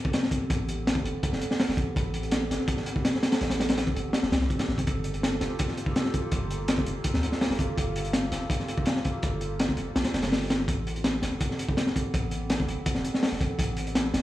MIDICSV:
0, 0, Header, 1, 4, 480
1, 0, Start_track
1, 0, Tempo, 363636
1, 661, Time_signature, 4, 2, 24, 8
1, 18770, End_track
2, 0, Start_track
2, 0, Title_t, "Ambient pad"
2, 0, Program_c, 0, 92
2, 0, Note_on_c, 0, 59, 81
2, 0, Note_on_c, 0, 60, 72
2, 0, Note_on_c, 0, 67, 72
2, 0, Note_on_c, 0, 69, 84
2, 6364, Note_off_c, 0, 60, 0
2, 6366, Note_off_c, 0, 59, 0
2, 6424, Note_on_c, 0, 65, 72
2, 6425, Note_on_c, 0, 58, 77
2, 14044, Note_off_c, 0, 67, 0
2, 14046, Note_off_c, 0, 69, 0
2, 14049, Note_off_c, 0, 65, 0
2, 14050, Note_off_c, 0, 58, 0
2, 14099, Note_on_c, 0, 60, 70
2, 14102, Note_on_c, 0, 59, 82
2, 14104, Note_on_c, 0, 67, 71
2, 14104, Note_on_c, 0, 69, 89
2, 18770, Note_off_c, 0, 59, 0
2, 18770, Note_off_c, 0, 60, 0
2, 18770, Note_off_c, 0, 67, 0
2, 18770, Note_off_c, 0, 69, 0
2, 18770, End_track
3, 0, Start_track
3, 0, Title_t, "808-style bass"
3, 0, Program_c, 1, 38
3, 661, Note_on_c, 1, 33, 97
3, 1362, Note_off_c, 1, 33, 0
3, 1380, Note_on_c, 1, 31, 89
3, 1490, Note_off_c, 1, 31, 0
3, 1741, Note_on_c, 1, 28, 96
3, 1848, Note_off_c, 1, 28, 0
3, 2226, Note_on_c, 1, 28, 83
3, 2330, Note_off_c, 1, 28, 0
3, 2338, Note_on_c, 1, 33, 101
3, 2449, Note_off_c, 1, 33, 0
3, 2588, Note_on_c, 1, 33, 100
3, 3286, Note_off_c, 1, 33, 0
3, 3302, Note_on_c, 1, 31, 86
3, 3411, Note_off_c, 1, 31, 0
3, 4502, Note_on_c, 1, 33, 96
3, 5203, Note_off_c, 1, 33, 0
3, 5223, Note_on_c, 1, 31, 88
3, 5332, Note_off_c, 1, 31, 0
3, 5585, Note_on_c, 1, 28, 93
3, 5690, Note_off_c, 1, 28, 0
3, 5701, Note_on_c, 1, 36, 97
3, 5942, Note_on_c, 1, 33, 98
3, 5962, Note_off_c, 1, 36, 0
3, 6051, Note_off_c, 1, 33, 0
3, 6178, Note_on_c, 1, 33, 99
3, 6396, Note_off_c, 1, 33, 0
3, 6433, Note_on_c, 1, 31, 102
3, 7128, Note_off_c, 1, 31, 0
3, 7141, Note_on_c, 1, 29, 86
3, 7251, Note_off_c, 1, 29, 0
3, 8339, Note_on_c, 1, 31, 99
3, 9041, Note_off_c, 1, 31, 0
3, 9061, Note_on_c, 1, 29, 87
3, 9171, Note_off_c, 1, 29, 0
3, 9420, Note_on_c, 1, 38, 94
3, 9528, Note_off_c, 1, 38, 0
3, 9898, Note_on_c, 1, 26, 86
3, 10007, Note_off_c, 1, 26, 0
3, 10019, Note_on_c, 1, 31, 105
3, 10130, Note_off_c, 1, 31, 0
3, 10265, Note_on_c, 1, 31, 97
3, 10964, Note_off_c, 1, 31, 0
3, 10976, Note_on_c, 1, 29, 88
3, 11089, Note_off_c, 1, 29, 0
3, 12187, Note_on_c, 1, 31, 98
3, 12885, Note_off_c, 1, 31, 0
3, 12900, Note_on_c, 1, 29, 86
3, 13010, Note_off_c, 1, 29, 0
3, 13139, Note_on_c, 1, 34, 84
3, 13250, Note_off_c, 1, 34, 0
3, 13379, Note_on_c, 1, 29, 91
3, 13499, Note_on_c, 1, 31, 107
3, 13519, Note_off_c, 1, 29, 0
3, 14080, Note_off_c, 1, 31, 0
3, 14099, Note_on_c, 1, 33, 100
3, 14801, Note_off_c, 1, 33, 0
3, 14819, Note_on_c, 1, 31, 88
3, 14930, Note_off_c, 1, 31, 0
3, 16024, Note_on_c, 1, 33, 99
3, 16724, Note_off_c, 1, 33, 0
3, 16742, Note_on_c, 1, 31, 90
3, 16852, Note_off_c, 1, 31, 0
3, 17103, Note_on_c, 1, 28, 96
3, 17209, Note_off_c, 1, 28, 0
3, 17583, Note_on_c, 1, 28, 83
3, 17689, Note_off_c, 1, 28, 0
3, 17696, Note_on_c, 1, 33, 100
3, 17809, Note_off_c, 1, 33, 0
3, 17936, Note_on_c, 1, 33, 99
3, 18640, Note_off_c, 1, 33, 0
3, 18660, Note_on_c, 1, 31, 90
3, 18770, Note_off_c, 1, 31, 0
3, 18770, End_track
4, 0, Start_track
4, 0, Title_t, "Drums"
4, 65, Note_on_c, 9, 36, 99
4, 175, Note_on_c, 9, 42, 78
4, 182, Note_on_c, 9, 38, 116
4, 197, Note_off_c, 9, 36, 0
4, 303, Note_off_c, 9, 38, 0
4, 303, Note_on_c, 9, 38, 56
4, 307, Note_off_c, 9, 42, 0
4, 413, Note_on_c, 9, 36, 96
4, 418, Note_on_c, 9, 42, 64
4, 435, Note_off_c, 9, 38, 0
4, 545, Note_off_c, 9, 36, 0
4, 550, Note_off_c, 9, 42, 0
4, 661, Note_on_c, 9, 36, 111
4, 663, Note_on_c, 9, 42, 91
4, 793, Note_off_c, 9, 36, 0
4, 795, Note_off_c, 9, 42, 0
4, 904, Note_on_c, 9, 42, 67
4, 1036, Note_off_c, 9, 42, 0
4, 1152, Note_on_c, 9, 38, 117
4, 1152, Note_on_c, 9, 42, 77
4, 1257, Note_on_c, 9, 36, 101
4, 1284, Note_off_c, 9, 38, 0
4, 1284, Note_off_c, 9, 42, 0
4, 1389, Note_off_c, 9, 36, 0
4, 1392, Note_on_c, 9, 42, 74
4, 1524, Note_off_c, 9, 42, 0
4, 1625, Note_on_c, 9, 36, 106
4, 1626, Note_on_c, 9, 42, 83
4, 1753, Note_on_c, 9, 38, 57
4, 1757, Note_off_c, 9, 36, 0
4, 1758, Note_off_c, 9, 42, 0
4, 1866, Note_on_c, 9, 42, 69
4, 1885, Note_off_c, 9, 38, 0
4, 1991, Note_on_c, 9, 38, 58
4, 1998, Note_off_c, 9, 42, 0
4, 2101, Note_on_c, 9, 46, 80
4, 2107, Note_off_c, 9, 38, 0
4, 2107, Note_on_c, 9, 38, 113
4, 2233, Note_off_c, 9, 46, 0
4, 2234, Note_off_c, 9, 38, 0
4, 2234, Note_on_c, 9, 38, 48
4, 2338, Note_on_c, 9, 36, 90
4, 2345, Note_on_c, 9, 42, 70
4, 2366, Note_off_c, 9, 38, 0
4, 2470, Note_off_c, 9, 36, 0
4, 2477, Note_off_c, 9, 42, 0
4, 2589, Note_on_c, 9, 36, 101
4, 2594, Note_on_c, 9, 42, 80
4, 2721, Note_off_c, 9, 36, 0
4, 2726, Note_off_c, 9, 42, 0
4, 2821, Note_on_c, 9, 42, 72
4, 2945, Note_off_c, 9, 42, 0
4, 2945, Note_on_c, 9, 42, 42
4, 3054, Note_off_c, 9, 42, 0
4, 3054, Note_on_c, 9, 42, 87
4, 3063, Note_on_c, 9, 38, 115
4, 3186, Note_off_c, 9, 42, 0
4, 3195, Note_off_c, 9, 38, 0
4, 3313, Note_on_c, 9, 42, 65
4, 3314, Note_on_c, 9, 38, 57
4, 3445, Note_off_c, 9, 42, 0
4, 3446, Note_off_c, 9, 38, 0
4, 3534, Note_on_c, 9, 36, 116
4, 3539, Note_on_c, 9, 42, 84
4, 3656, Note_on_c, 9, 38, 41
4, 3666, Note_off_c, 9, 36, 0
4, 3671, Note_off_c, 9, 42, 0
4, 3777, Note_on_c, 9, 42, 77
4, 3788, Note_off_c, 9, 38, 0
4, 3905, Note_on_c, 9, 36, 92
4, 3909, Note_off_c, 9, 42, 0
4, 4023, Note_on_c, 9, 38, 117
4, 4024, Note_on_c, 9, 42, 87
4, 4037, Note_off_c, 9, 36, 0
4, 4153, Note_off_c, 9, 38, 0
4, 4153, Note_on_c, 9, 38, 53
4, 4156, Note_off_c, 9, 42, 0
4, 4260, Note_off_c, 9, 38, 0
4, 4260, Note_on_c, 9, 38, 106
4, 4264, Note_on_c, 9, 42, 75
4, 4380, Note_off_c, 9, 42, 0
4, 4380, Note_on_c, 9, 42, 78
4, 4385, Note_off_c, 9, 38, 0
4, 4385, Note_on_c, 9, 38, 104
4, 4497, Note_off_c, 9, 42, 0
4, 4497, Note_on_c, 9, 42, 78
4, 4504, Note_off_c, 9, 38, 0
4, 4504, Note_on_c, 9, 38, 98
4, 4618, Note_off_c, 9, 38, 0
4, 4618, Note_on_c, 9, 38, 105
4, 4629, Note_off_c, 9, 42, 0
4, 4634, Note_on_c, 9, 42, 77
4, 4750, Note_off_c, 9, 38, 0
4, 4751, Note_on_c, 9, 38, 111
4, 4758, Note_off_c, 9, 42, 0
4, 4758, Note_on_c, 9, 42, 79
4, 4865, Note_off_c, 9, 42, 0
4, 4865, Note_on_c, 9, 42, 88
4, 4877, Note_off_c, 9, 38, 0
4, 4877, Note_on_c, 9, 38, 110
4, 4983, Note_off_c, 9, 42, 0
4, 4983, Note_on_c, 9, 42, 86
4, 4985, Note_off_c, 9, 38, 0
4, 4985, Note_on_c, 9, 38, 119
4, 5108, Note_on_c, 9, 36, 96
4, 5115, Note_off_c, 9, 42, 0
4, 5117, Note_off_c, 9, 38, 0
4, 5231, Note_on_c, 9, 42, 73
4, 5240, Note_off_c, 9, 36, 0
4, 5363, Note_off_c, 9, 42, 0
4, 5453, Note_on_c, 9, 38, 109
4, 5467, Note_on_c, 9, 42, 80
4, 5584, Note_off_c, 9, 38, 0
4, 5584, Note_on_c, 9, 38, 60
4, 5599, Note_off_c, 9, 42, 0
4, 5706, Note_off_c, 9, 38, 0
4, 5706, Note_on_c, 9, 38, 110
4, 5710, Note_on_c, 9, 42, 79
4, 5823, Note_off_c, 9, 38, 0
4, 5823, Note_on_c, 9, 38, 49
4, 5842, Note_off_c, 9, 42, 0
4, 5942, Note_on_c, 9, 36, 84
4, 5945, Note_on_c, 9, 42, 56
4, 5955, Note_off_c, 9, 38, 0
4, 6061, Note_off_c, 9, 42, 0
4, 6061, Note_on_c, 9, 42, 81
4, 6066, Note_on_c, 9, 38, 107
4, 6074, Note_off_c, 9, 36, 0
4, 6187, Note_off_c, 9, 38, 0
4, 6187, Note_on_c, 9, 38, 48
4, 6193, Note_off_c, 9, 42, 0
4, 6308, Note_on_c, 9, 36, 86
4, 6318, Note_on_c, 9, 42, 67
4, 6319, Note_off_c, 9, 38, 0
4, 6427, Note_off_c, 9, 42, 0
4, 6427, Note_on_c, 9, 42, 85
4, 6433, Note_off_c, 9, 36, 0
4, 6433, Note_on_c, 9, 36, 114
4, 6559, Note_off_c, 9, 42, 0
4, 6565, Note_off_c, 9, 36, 0
4, 6653, Note_on_c, 9, 42, 66
4, 6783, Note_off_c, 9, 42, 0
4, 6783, Note_on_c, 9, 42, 44
4, 6907, Note_on_c, 9, 38, 109
4, 6915, Note_off_c, 9, 42, 0
4, 6915, Note_on_c, 9, 42, 89
4, 7039, Note_off_c, 9, 38, 0
4, 7047, Note_off_c, 9, 42, 0
4, 7136, Note_on_c, 9, 38, 55
4, 7142, Note_on_c, 9, 42, 72
4, 7268, Note_off_c, 9, 38, 0
4, 7274, Note_off_c, 9, 42, 0
4, 7377, Note_on_c, 9, 42, 91
4, 7388, Note_on_c, 9, 36, 105
4, 7500, Note_on_c, 9, 38, 37
4, 7509, Note_off_c, 9, 42, 0
4, 7520, Note_off_c, 9, 36, 0
4, 7621, Note_on_c, 9, 42, 65
4, 7632, Note_off_c, 9, 38, 0
4, 7739, Note_on_c, 9, 36, 90
4, 7753, Note_off_c, 9, 42, 0
4, 7863, Note_on_c, 9, 42, 81
4, 7867, Note_on_c, 9, 38, 126
4, 7871, Note_off_c, 9, 36, 0
4, 7979, Note_off_c, 9, 38, 0
4, 7979, Note_on_c, 9, 38, 55
4, 7995, Note_off_c, 9, 42, 0
4, 8101, Note_on_c, 9, 42, 69
4, 8104, Note_on_c, 9, 36, 93
4, 8111, Note_off_c, 9, 38, 0
4, 8233, Note_off_c, 9, 42, 0
4, 8236, Note_off_c, 9, 36, 0
4, 8336, Note_on_c, 9, 42, 91
4, 8341, Note_on_c, 9, 36, 116
4, 8468, Note_off_c, 9, 42, 0
4, 8473, Note_off_c, 9, 36, 0
4, 8586, Note_on_c, 9, 42, 70
4, 8718, Note_off_c, 9, 42, 0
4, 8817, Note_on_c, 9, 42, 94
4, 8825, Note_on_c, 9, 38, 123
4, 8948, Note_on_c, 9, 36, 100
4, 8949, Note_off_c, 9, 42, 0
4, 8957, Note_off_c, 9, 38, 0
4, 9060, Note_on_c, 9, 42, 65
4, 9080, Note_off_c, 9, 36, 0
4, 9192, Note_off_c, 9, 42, 0
4, 9293, Note_on_c, 9, 42, 95
4, 9301, Note_on_c, 9, 36, 115
4, 9422, Note_on_c, 9, 38, 59
4, 9425, Note_off_c, 9, 42, 0
4, 9433, Note_off_c, 9, 36, 0
4, 9543, Note_on_c, 9, 42, 72
4, 9554, Note_off_c, 9, 38, 0
4, 9663, Note_on_c, 9, 38, 48
4, 9675, Note_off_c, 9, 42, 0
4, 9782, Note_on_c, 9, 46, 77
4, 9786, Note_off_c, 9, 38, 0
4, 9786, Note_on_c, 9, 38, 105
4, 9906, Note_off_c, 9, 38, 0
4, 9906, Note_on_c, 9, 38, 59
4, 9914, Note_off_c, 9, 46, 0
4, 10018, Note_on_c, 9, 36, 89
4, 10031, Note_on_c, 9, 42, 64
4, 10038, Note_off_c, 9, 38, 0
4, 10150, Note_off_c, 9, 36, 0
4, 10163, Note_off_c, 9, 42, 0
4, 10264, Note_on_c, 9, 36, 111
4, 10269, Note_on_c, 9, 42, 85
4, 10396, Note_off_c, 9, 36, 0
4, 10401, Note_off_c, 9, 42, 0
4, 10502, Note_on_c, 9, 42, 74
4, 10620, Note_off_c, 9, 42, 0
4, 10620, Note_on_c, 9, 42, 48
4, 10737, Note_on_c, 9, 38, 118
4, 10738, Note_off_c, 9, 42, 0
4, 10738, Note_on_c, 9, 42, 85
4, 10869, Note_off_c, 9, 38, 0
4, 10870, Note_off_c, 9, 42, 0
4, 10979, Note_on_c, 9, 42, 75
4, 10981, Note_on_c, 9, 38, 56
4, 11111, Note_off_c, 9, 42, 0
4, 11113, Note_off_c, 9, 38, 0
4, 11217, Note_on_c, 9, 36, 118
4, 11228, Note_on_c, 9, 42, 94
4, 11345, Note_on_c, 9, 38, 37
4, 11349, Note_off_c, 9, 36, 0
4, 11360, Note_off_c, 9, 42, 0
4, 11461, Note_on_c, 9, 42, 74
4, 11477, Note_off_c, 9, 38, 0
4, 11584, Note_on_c, 9, 36, 96
4, 11593, Note_off_c, 9, 42, 0
4, 11689, Note_on_c, 9, 42, 88
4, 11706, Note_on_c, 9, 38, 117
4, 11716, Note_off_c, 9, 36, 0
4, 11821, Note_off_c, 9, 42, 0
4, 11823, Note_off_c, 9, 38, 0
4, 11823, Note_on_c, 9, 38, 58
4, 11940, Note_on_c, 9, 42, 74
4, 11948, Note_on_c, 9, 36, 95
4, 11955, Note_off_c, 9, 38, 0
4, 12072, Note_off_c, 9, 42, 0
4, 12080, Note_off_c, 9, 36, 0
4, 12178, Note_on_c, 9, 42, 80
4, 12185, Note_on_c, 9, 36, 116
4, 12310, Note_off_c, 9, 42, 0
4, 12317, Note_off_c, 9, 36, 0
4, 12418, Note_on_c, 9, 42, 62
4, 12550, Note_off_c, 9, 42, 0
4, 12664, Note_on_c, 9, 42, 80
4, 12671, Note_on_c, 9, 38, 118
4, 12784, Note_on_c, 9, 36, 87
4, 12796, Note_off_c, 9, 42, 0
4, 12803, Note_off_c, 9, 38, 0
4, 12895, Note_on_c, 9, 42, 73
4, 12916, Note_off_c, 9, 36, 0
4, 13027, Note_off_c, 9, 42, 0
4, 13143, Note_on_c, 9, 38, 106
4, 13145, Note_on_c, 9, 42, 75
4, 13257, Note_off_c, 9, 38, 0
4, 13257, Note_on_c, 9, 38, 93
4, 13258, Note_off_c, 9, 42, 0
4, 13258, Note_on_c, 9, 42, 81
4, 13386, Note_off_c, 9, 38, 0
4, 13386, Note_off_c, 9, 42, 0
4, 13386, Note_on_c, 9, 38, 110
4, 13386, Note_on_c, 9, 42, 78
4, 13497, Note_off_c, 9, 42, 0
4, 13497, Note_on_c, 9, 42, 78
4, 13505, Note_off_c, 9, 38, 0
4, 13505, Note_on_c, 9, 38, 110
4, 13619, Note_on_c, 9, 46, 77
4, 13626, Note_off_c, 9, 38, 0
4, 13626, Note_on_c, 9, 38, 113
4, 13629, Note_off_c, 9, 42, 0
4, 13744, Note_off_c, 9, 38, 0
4, 13744, Note_on_c, 9, 38, 52
4, 13751, Note_off_c, 9, 46, 0
4, 13862, Note_on_c, 9, 42, 82
4, 13863, Note_off_c, 9, 38, 0
4, 13863, Note_on_c, 9, 38, 114
4, 13994, Note_off_c, 9, 42, 0
4, 13995, Note_off_c, 9, 38, 0
4, 14098, Note_on_c, 9, 36, 120
4, 14103, Note_on_c, 9, 42, 86
4, 14230, Note_off_c, 9, 36, 0
4, 14235, Note_off_c, 9, 42, 0
4, 14345, Note_on_c, 9, 42, 71
4, 14466, Note_off_c, 9, 42, 0
4, 14466, Note_on_c, 9, 42, 41
4, 14575, Note_on_c, 9, 38, 111
4, 14576, Note_off_c, 9, 42, 0
4, 14576, Note_on_c, 9, 42, 80
4, 14707, Note_off_c, 9, 38, 0
4, 14708, Note_off_c, 9, 42, 0
4, 14811, Note_on_c, 9, 38, 58
4, 14820, Note_on_c, 9, 42, 74
4, 14943, Note_off_c, 9, 38, 0
4, 14952, Note_off_c, 9, 42, 0
4, 15054, Note_on_c, 9, 42, 84
4, 15057, Note_on_c, 9, 36, 106
4, 15186, Note_off_c, 9, 42, 0
4, 15189, Note_off_c, 9, 36, 0
4, 15191, Note_on_c, 9, 38, 35
4, 15300, Note_on_c, 9, 42, 67
4, 15323, Note_off_c, 9, 38, 0
4, 15425, Note_on_c, 9, 36, 97
4, 15432, Note_off_c, 9, 42, 0
4, 15538, Note_on_c, 9, 38, 109
4, 15545, Note_on_c, 9, 42, 96
4, 15557, Note_off_c, 9, 36, 0
4, 15664, Note_off_c, 9, 38, 0
4, 15664, Note_on_c, 9, 38, 59
4, 15677, Note_off_c, 9, 42, 0
4, 15785, Note_on_c, 9, 36, 98
4, 15792, Note_on_c, 9, 42, 66
4, 15796, Note_off_c, 9, 38, 0
4, 15917, Note_off_c, 9, 36, 0
4, 15924, Note_off_c, 9, 42, 0
4, 16023, Note_on_c, 9, 36, 116
4, 16026, Note_on_c, 9, 42, 83
4, 16155, Note_off_c, 9, 36, 0
4, 16158, Note_off_c, 9, 42, 0
4, 16252, Note_on_c, 9, 42, 66
4, 16384, Note_off_c, 9, 42, 0
4, 16494, Note_on_c, 9, 42, 88
4, 16502, Note_on_c, 9, 38, 104
4, 16626, Note_off_c, 9, 42, 0
4, 16630, Note_on_c, 9, 36, 86
4, 16634, Note_off_c, 9, 38, 0
4, 16743, Note_on_c, 9, 42, 75
4, 16762, Note_off_c, 9, 36, 0
4, 16875, Note_off_c, 9, 42, 0
4, 16974, Note_on_c, 9, 42, 94
4, 16977, Note_on_c, 9, 36, 120
4, 17091, Note_on_c, 9, 38, 57
4, 17106, Note_off_c, 9, 42, 0
4, 17109, Note_off_c, 9, 36, 0
4, 17218, Note_on_c, 9, 42, 69
4, 17223, Note_off_c, 9, 38, 0
4, 17348, Note_on_c, 9, 38, 54
4, 17350, Note_off_c, 9, 42, 0
4, 17460, Note_off_c, 9, 38, 0
4, 17460, Note_on_c, 9, 38, 115
4, 17461, Note_on_c, 9, 46, 74
4, 17579, Note_off_c, 9, 38, 0
4, 17579, Note_on_c, 9, 38, 53
4, 17593, Note_off_c, 9, 46, 0
4, 17696, Note_on_c, 9, 36, 87
4, 17701, Note_on_c, 9, 42, 73
4, 17711, Note_off_c, 9, 38, 0
4, 17828, Note_off_c, 9, 36, 0
4, 17833, Note_off_c, 9, 42, 0
4, 17935, Note_on_c, 9, 36, 112
4, 17941, Note_on_c, 9, 42, 96
4, 18067, Note_off_c, 9, 36, 0
4, 18073, Note_off_c, 9, 42, 0
4, 18171, Note_on_c, 9, 42, 76
4, 18303, Note_off_c, 9, 42, 0
4, 18305, Note_on_c, 9, 42, 45
4, 18418, Note_on_c, 9, 38, 108
4, 18419, Note_off_c, 9, 42, 0
4, 18419, Note_on_c, 9, 42, 83
4, 18550, Note_off_c, 9, 38, 0
4, 18551, Note_off_c, 9, 42, 0
4, 18660, Note_on_c, 9, 38, 63
4, 18666, Note_on_c, 9, 42, 67
4, 18770, Note_off_c, 9, 38, 0
4, 18770, Note_off_c, 9, 42, 0
4, 18770, End_track
0, 0, End_of_file